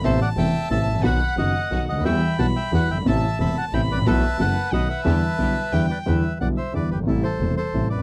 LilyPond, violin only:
\new Staff \with { instrumentName = "Violin" } { \time 3/4 \key e \minor \tempo 4 = 180 a''2. | fis''2~ fis''8 r8 | b''2. | a''2 b''4 |
a''2 fis''4 | a''2 g''4 | r2. | r2. | }